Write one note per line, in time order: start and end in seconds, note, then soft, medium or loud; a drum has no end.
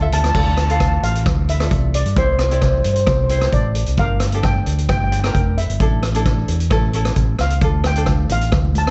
0.00 0.22 F4 medium
0.00 0.22 A4 medium
0.00 0.22 E5 medium
0.00 0.12 A5 medium
0.12 0.33 D2 medium
0.12 0.21 A5 medium
0.12 closed hi-hat medium
0.12 low conga medium
0.22 0.28 A5 medium
0.22 cross-stick medium
0.22 closed hi-hat medium
0.22 high conga medium
0.29 0.35 A5 medium
0.34 0.96 D2 medium
0.34 0.56 F4 medium
0.34 0.56 A4 medium
0.34 0.56 D5 medium
0.34 kick medium
0.34 crash medium
0.45 0.51 A5 medium
0.52 0.58 A5 soft
0.57 0.67 A5 medium
0.57 cross-stick medium
0.57 closed hi-hat medium
0.68 1.24 F4 medium
0.68 1.24 A4 soft
0.68 1.24 F5 medium
0.68 0.73 A5 medium
0.68 closed hi-hat soft
0.74 0.79 A5 medium
0.80 0.86 A5 medium
0.80 kick medium
0.80 cross-stick medium
0.80 closed hi-hat medium
0.88 0.95 A5 medium
1.03 1.24 A1 medium
1.03 1.46 F5 medium
1.03 closed hi-hat medium
1.15 closed hi-hat soft
1.26 1.66 D2 medium
1.26 kick loud
1.26 cross-stick medium
1.26 closed hi-hat medium
1.49 1.92 E5 medium
1.49 closed hi-hat medium
1.60 1.94 F4 medium
1.60 1.94 A4 medium
1.60 1.95 D5 medium
1.60 cross-stick medium
1.60 closed hi-hat medium
1.71 2.02 C2 medium
1.71 kick medium
1.71 closed hi-hat medium
1.94 2.18 D5 medium
1.94 closed hi-hat medium
2.06 2.16 G2 medium
2.06 closed hi-hat medium
2.16 2.78 C2 medium
2.16 2.37 E4 medium
2.16 2.38 G4 medium
2.16 2.38 C5 medium
2.16 2.25 C5 medium
2.16 kick medium
2.16 closed hi-hat medium
2.26 2.32 C5 medium
2.33 2.39 C5 medium
2.39 2.45 C5 medium
2.39 cross-stick medium
2.39 closed hi-hat medium
2.47 2.53 C5 medium
2.51 2.99 E4 medium
2.51 2.99 G4 medium
2.51 2.61 C5 soft
2.51 3.00 D5 medium
2.51 closed hi-hat medium
2.62 2.70 C5 medium
2.62 kick medium
2.62 cross-stick medium
2.62 closed hi-hat medium
2.71 2.77 C5 soft
2.78 2.84 C5 soft
2.84 3.05 G2 medium
2.84 2.92 C5 soft
2.84 closed hi-hat medium
2.94 2.99 C5 medium
2.94 closed hi-hat medium
3.01 3.06 C5 soft
3.07 3.48 C2 medium
3.07 3.14 C5 medium
3.07 kick loud
3.07 cross-stick medium
3.07 closed hi-hat medium
3.16 3.22 C5 soft
3.24 3.29 C5 medium
3.29 3.71 E4 medium
3.29 3.72 G4 medium
3.29 3.37 C5 soft
3.29 3.72 C5 medium
3.29 closed hi-hat medium
3.39 3.45 C5 medium
3.39 cross-stick medium
3.39 closed hi-hat medium
3.52 3.84 A1 medium
3.52 3.96 D5 medium
3.52 kick medium
3.52 closed hi-hat medium
3.75 closed hi-hat medium
3.86 3.97 C2 medium
3.86 closed hi-hat medium
3.97 4.59 G1 medium
3.97 4.20 D4 medium
3.97 4.20 G4 soft
3.97 4.20 A#4 medium
3.97 4.41 F5 medium
3.97 kick medium
3.97 closed hi-hat soft
4.20 cross-stick medium
4.20 closed hi-hat medium
4.32 4.88 D4 medium
4.32 4.88 G4 medium
4.32 4.89 A4 medium
4.32 closed hi-hat soft
4.43 4.88 G5 medium
4.43 kick medium
4.43 cross-stick medium
4.43 closed hi-hat medium
4.66 4.87 D2 medium
4.66 closed hi-hat medium
4.78 closed hi-hat soft
4.89 5.30 G1 medium
4.89 4.96 G5 medium
4.89 kick medium
4.89 cross-stick medium
4.89 closed hi-hat medium
4.97 5.03 G5 medium
5.04 5.11 G5 medium
5.12 5.19 G5 medium
5.12 closed hi-hat medium
5.20 5.26 G5 medium
5.24 5.58 D4 medium
5.24 5.58 G4 soft
5.24 5.59 A#4 medium
5.24 5.32 G5 medium
5.24 cross-stick medium
5.24 closed hi-hat medium
5.34 5.66 F1 medium
5.34 5.40 G5 medium
5.34 kick medium
5.34 closed hi-hat medium
5.42 5.50 G5 medium
5.58 6.00 E5 medium
5.58 closed hi-hat medium
5.70 5.79 G1 medium
5.70 closed hi-hat medium
5.80 6.41 A1 medium
5.80 6.01 D4 medium
5.80 6.01 E4 soft
5.80 6.02 A4 medium
5.80 kick medium
5.80 closed hi-hat medium
6.03 cross-stick medium
6.03 closed hi-hat medium
6.15 6.63 D4 medium
6.15 6.63 E4 medium
6.15 6.63 A4 medium
6.15 closed hi-hat medium
6.26 kick medium
6.26 cross-stick medium
6.26 closed hi-hat medium
6.48 6.69 E2 medium
6.48 closed hi-hat medium
6.60 closed hi-hat medium
6.70 7.12 A1 medium
6.70 6.90 C#4 medium
6.70 6.90 E4 medium
6.70 6.90 A4 medium
6.70 kick loud
6.70 cross-stick medium
6.70 closed hi-hat medium
6.93 7.35 C#4 medium
6.93 7.36 E4 medium
6.93 7.36 A4 medium
6.93 closed hi-hat medium
7.05 cross-stick medium
7.05 closed hi-hat medium
7.16 7.37 A1 medium
7.16 kick medium
7.16 closed hi-hat medium
7.39 7.60 C#2 medium
7.39 7.83 F5 medium
7.39 cross-stick medium
7.39 closed hi-hat medium
7.50 closed hi-hat medium
7.61 8.23 D2 medium
7.61 7.83 D4 medium
7.61 7.83 F4 soft
7.61 7.84 A4 medium
7.61 kick medium
7.61 closed hi-hat medium
7.84 8.28 G5 medium
7.84 cross-stick medium
7.84 closed hi-hat medium
7.84 high conga medium
7.96 8.51 D4 medium
7.96 8.51 F4 medium
7.96 8.51 A4 medium
7.96 closed hi-hat medium
8.06 kick medium
8.06 cross-stick medium
8.06 closed hi-hat medium
8.29 8.51 A1 medium
8.29 8.78 F5 medium
8.29 closed hi-hat medium
8.29 low conga medium
8.41 closed hi-hat medium
8.52 8.90 D2 medium
8.52 kick medium
8.52 cross-stick medium
8.52 closed hi-hat medium
8.65 high conga medium
8.75 8.90 A5 medium
8.75 closed hi-hat medium
8.75 high conga medium
8.87 cross-stick medium
8.87 closed hi-hat soft
8.87 low conga medium